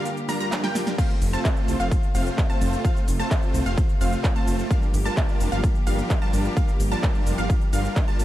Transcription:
Already playing: string section D3 A#3 G4
0.05 closed hi-hat, cabasa
0.17 closed hi-hat, cabasa
0.29 supersaw synth G3 D4 F4 A#4 A#5, synth pluck A#5, snare, open hi-hat, cabasa
0.40 supersaw synth G3 D4 F4 A#4 A#5, synth pluck A#5, closed hi-hat, cabasa
0.52 snare, clap, closed hi-hat, cabasa
0.63 supersaw synth G3 D4 F4 A#4 G5, synth pluck G5, snare, closed hi-hat
0.75 snare, open hi-hat, cabasa
0.87 snare, closed hi-hat, cabasa
0.98 string section C3 A3 F4, supersaw synth A3 C4 F4 C5 F5, synth pluck F5, kick, closed hi-hat, crash, ride, cabasa
1.10 cabasa
1.22 detuned saw bass F1, open hi-hat, ride, cabasa
1.33 supersaw synth A3 C4 F4 C5 A5, synth pluck A5, closed hi-hat, cabasa
1.45 kick, clap, closed hi-hat, ride, cabasa
1.57 closed hi-hat
1.68 detuned saw bass C2, open hi-hat, ride, cabasa
1.80 detuned saw bass F1, supersaw synth A3 C4 F4 C5 F5, synth pluck F5, closed hi-hat, cabasa
1.91 kick, closed hi-hat, ride, cabasa
2.03 closed hi-hat
2.15 detuned saw bass F1, supersaw synth A3 C4 F4 C5 F5, synth pluck F5, open hi-hat, ride, cabasa
2.26 closed hi-hat, cabasa
2.38 kick, clap, closed hi-hat, ride, cabasa
2.50 supersaw synth A3 C4 F4 C5 A5, synth pluck A5, closed hi-hat
2.61 detuned saw bass F1, open hi-hat, ride, cabasa
2.73 closed hi-hat, cabasa
2.84 supersaw synth A3 C4 F4 C5 F5, synth pluck F5, kick, closed hi-hat, ride, cabasa
2.97 cabasa
3.08 detuned saw bass F1, open hi-hat, ride, cabasa
3.19 supersaw synth A3 C4 F4 C5 A5, synth pluck A5, closed hi-hat, cabasa
3.31 kick, clap, closed hi-hat, ride, cabasa
3.43 closed hi-hat
3.54 detuned saw bass C2, open hi-hat, ride, cabasa
3.66 detuned saw bass F1, supersaw synth A3 C4 F4 C5 F5, synth pluck F5, closed hi-hat, cabasa
3.78 kick, closed hi-hat, ride, cabasa
3.89 closed hi-hat
4.01 detuned saw bass F1, supersaw synth A3 C4 F4 C5 F5, synth pluck F5, open hi-hat, ride, cabasa
4.13 closed hi-hat, cabasa
4.24 kick, clap, closed hi-hat, ride, cabasa
4.36 supersaw synth A3 C4 F4 C5 A5, synth pluck A5, closed hi-hat
4.47 detuned saw bass F1, open hi-hat, ride, cabasa
4.59 closed hi-hat, cabasa
4.71 string section F3 A#3 G4, supersaw synth G3 D4 F4 A#4 F5, synth pluck F5, kick, closed hi-hat, ride, cabasa
4.83 cabasa
4.94 detuned saw bass G1, open hi-hat, ride, cabasa
5.05 supersaw synth G3 D4 F4 A#4 A5, synth pluck A5, closed hi-hat, cabasa
5.17 kick, clap, closed hi-hat, ride, cabasa
5.29 closed hi-hat
5.40 detuned saw bass F1, open hi-hat, ride, cabasa
5.52 detuned saw bass G1, supersaw synth G3 D4 F4 A#4 F5, synth pluck F5, closed hi-hat, cabasa
5.64 kick, closed hi-hat, ride, cabasa
5.75 closed hi-hat
5.87 detuned saw bass G1, supersaw synth G3 D4 F4 A#4 F5, synth pluck F5, open hi-hat, ride, cabasa
5.98 closed hi-hat, cabasa
6.10 kick, clap, closed hi-hat, ride, cabasa
6.22 supersaw synth G3 D4 F4 A#4 A5, synth pluck A5, closed hi-hat
6.33 detuned saw bass G1, open hi-hat, ride, cabasa
6.45 closed hi-hat, cabasa
6.57 supersaw synth G3 D4 F4 A#4 F5, synth pluck F5, kick, closed hi-hat, ride, cabasa
6.68 closed hi-hat, cabasa
6.80 detuned saw bass G1, open hi-hat, ride, cabasa
6.92 supersaw synth G3 D4 F4 A#4 A5, synth pluck A5, closed hi-hat, cabasa
7.03 kick, clap, closed hi-hat, ride, cabasa
7.15 closed hi-hat
7.26 detuned saw bass F1, open hi-hat, ride, cabasa
7.38 detuned saw bass G1, supersaw synth G3 D4 F4 A#4 F5, synth pluck F5, closed hi-hat, cabasa
7.50 kick, closed hi-hat, ride, cabasa
7.61 closed hi-hat
7.73 detuned saw bass G1, supersaw synth G3 D4 F4 A#4 F5, synth pluck F5, open hi-hat, ride, cabasa
7.85 closed hi-hat, cabasa
7.96 kick, clap, closed hi-hat, ride, cabasa
8.08 supersaw synth G3 D4 F4 A#4 A5, synth pluck A5, closed hi-hat
8.19 detuned saw bass G1, open hi-hat, ride, cabasa

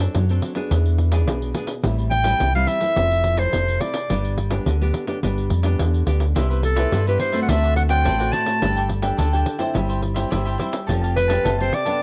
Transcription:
Already playing: nylon-string guitar F#3
0.00 nylon-string guitar C4 D4 A4
0.15 fingered electric bass F#2, nylon-string guitar F#3, pandeiro
0.29 nylon-string guitar C4 D4 A4, pandeiro
0.42 pandeiro
0.55 nylon-string guitar B3 D4 G#4, pandeiro
0.71 fingered electric bass E2, nylon-string guitar E3, pandeiro
0.86 pandeiro
0.98 pandeiro
1.12 nylon-string guitar B3 D4 G#4, pandeiro
1.27 fingered electric bass B1, nylon-string guitar B2, pandeiro
1.42 pandeiro
1.54 nylon-string guitar B3 D4 G#4, pandeiro
1.67 pandeiro
1.83 fingered electric bass A1, nylon-string guitar A2 G3 C4 E4, pandeiro
1.99 pandeiro
2.11 clarinet G5, pandeiro
2.24 nylon-string guitar G3 C4 E4, pandeiro
2.40 fingered electric bass C2, nylon-string guitar E3, pandeiro
2.55 nylon-string guitar G3 C4 E4, clarinet F5, pandeiro
2.67 clarinet E5, pandeiro
2.81 nylon-string guitar C4 E4 A4, pandeiro
2.96 fingered electric bass F1, nylon-string guitar F3, pandeiro
3.11 pandeiro
3.24 pandeiro
3.37 nylon-string guitar C4 E4 A4, clarinet C5, pandeiro
3.53 fingered electric bass F1, nylon-string guitar C3, pandeiro
3.68 pandeiro
3.81 nylon-string guitar C4 E4 A4, clarinet D5, pandeiro
3.94 pandeiro
4.10 fingered electric bass G1, nylon-string guitar G3 B3 D4 G4, pandeiro
4.25 pandeiro
4.38 pandeiro
4.51 nylon-string guitar B3 D4 G4, pandeiro
4.66 fingered electric bass D2, nylon-string guitar D3, pandeiro
4.81 nylon-string guitar B3 D4 G4, pandeiro
4.94 pandeiro
5.07 nylon-string guitar B3 D4 G4, pandeiro
5.23 fingered electric bass G1, nylon-string guitar G3 B3 D4 G4, pandeiro
5.38 pandeiro
5.50 fingered electric bass F2, pandeiro
5.63 nylon-string guitar B3 D4 G4, pandeiro
5.79 fingered electric bass E2, nylon-string guitar D3, pandeiro
5.94 pandeiro
6.06 fingered electric bass D2, nylon-string guitar B3 D4 G4, pandeiro
6.20 pandeiro
6.35 fingered electric bass C2, nylon-string guitar C3 B3 E4 G4, cavaquinho E4 B4 C5 E5, pandeiro
6.49 cavaquinho B4 C5 E5, pandeiro
6.62 clarinet A4, muted cavaquinho stroke, pandeiro
6.75 nylon-string guitar B3 E4 G4, cavaquinho B4 C5 E5, pandeiro
6.91 fingered electric bass G2, nylon-string guitar G2, cavaquinho E4 B4 C5 E5, pandeiro
7.06 nylon-string guitar B3 E4 G4, cavaquinho B4 C5 E5, clarinet B4, pandeiro
7.20 clarinet C5, pandeiro
7.32 nylon-string guitar A3 C4 F#4, cavaquinho B4 C5 E5, pandeiro
7.42 clarinet F#5
7.48 fingered electric bass D2, nylon-string guitar D3, cavaquinho D4 C5 D5 F#5, clarinet E5, pandeiro
7.63 cavaquinho C5 D5 F#5, pandeiro
7.76 clarinet F#5, muted cavaquinho stroke, pandeiro
7.89 nylon-string guitar A3 C4 F#4, cavaquinho C5 D5 F#5, clarinet G5, pandeiro
8.04 fingered electric bass A1, nylon-string guitar A2, cavaquinho D4 C5 D5 F#5, pandeiro
8.19 nylon-string guitar A3 C4 F#4, cavaquinho C5 D5 F#5, pandeiro
8.32 cavaquinho D4 C5 D5 F#5, clarinet A5, pandeiro
8.46 pandeiro
8.61 fingered electric bass G1, nylon-string guitar G3 D4 G4 A4, cavaquinho D4 A4 D5 G5, pandeiro
8.76 cavaquinho A4 D5 G5, pandeiro
8.89 muted cavaquinho stroke, pandeiro
9.02 nylon-string guitar D4 G4 A4, cavaquinho A4 D5 G5, pandeiro
9.17 fingered electric bass D2, nylon-string guitar D3, cavaquinho D4 A4 D5 G5, pandeiro
9.33 nylon-string guitar D4 G4 A4, cavaquinho A4 D5 G5, pandeiro
9.46 pandeiro
9.58 nylon-string guitar C4 E4 C5, cavaquinho A4 D5 G5, pandeiro
9.74 fingered electric bass G1, nylon-string guitar G3, cavaquinho E4 G4 C5 E5, pandeiro
9.89 cavaquinho G4 C5 E5, pandeiro
10.01 muted cavaquinho stroke, pandeiro
10.14 nylon-string guitar C4 E4 C5, cavaquinho G4 C5 E5, pandeiro
10.30 fingered electric bass G1, nylon-string guitar G3, cavaquinho E4 G4 C5 E5, pandeiro
10.45 cavaquinho G4 C5 E5, pandeiro
10.58 nylon-string guitar C4 E4 C5, cavaquinho E4 G4 C5 E5, pandeiro
10.73 pandeiro
10.87 fingered electric bass F1, nylon-string guitar F3 C4 G4 A4, cavaquinho G4 A4 F5 A5, pandeiro
11.01 cavaquinho G4 F5 A5, pandeiro
11.15 clarinet B4, muted cavaquinho stroke, pandeiro
11.28 nylon-string guitar C4 G4 A4, cavaquinho G4 F5 A5, pandeiro
11.44 fingered electric bass F#1, nylon-string guitar C3, cavaquinho G4 A4 F5 A5, pandeiro
11.59 nylon-string guitar C4 G4 A4, cavaquinho G4 F5 A5, clarinet C5, pandeiro
11.73 clarinet D5, pandeiro
11.85 nylon-string guitar B3 D4 A4, cavaquinho G4 F5 A5, pandeiro

